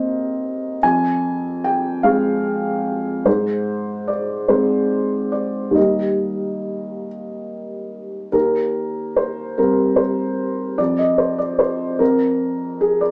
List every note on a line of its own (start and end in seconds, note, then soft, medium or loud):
0.00 0.78 D#2 soft
0.00 0.78 A#3 soft
0.00 0.78 C4 soft
0.00 0.84 C5 medium
0.00 0.82 D#5 medium
0.83 3.22 F2 soft
0.83 1.64 G#5 medium
1.64 2.04 G5 medium
2.03 3.22 G#3 soft
2.03 3.22 C4 soft
2.03 3.25 F5 medium
3.25 5.72 G#2 medium
3.25 4.08 C5 medium
4.08 4.49 D5 medium
4.48 5.72 G#3 soft
4.48 5.72 C4 soft
4.48 5.32 C5 medium
5.32 5.75 D5 medium
5.71 8.27 D#2 soft
5.71 8.28 D#3 soft
5.71 8.29 G3 soft
5.71 8.29 A#3 soft
5.75 7.05 D#5 medium
8.32 10.74 D#2 soft
8.32 9.16 A#4 medium
9.16 9.58 C5 medium
9.58 10.74 G3 soft
9.58 10.75 C4 soft
9.58 9.98 A#4 medium
9.96 10.77 C5 medium
10.78 13.11 F2 soft
10.78 10.98 D5 medium
10.99 11.19 D#5 medium
11.18 11.39 C5 medium
11.38 11.59 D5 medium
11.59 12.00 C5 medium
11.99 13.11 C4 soft
11.99 12.81 A#4 medium
12.81 13.01 G#4 medium
13.01 13.11 D5 medium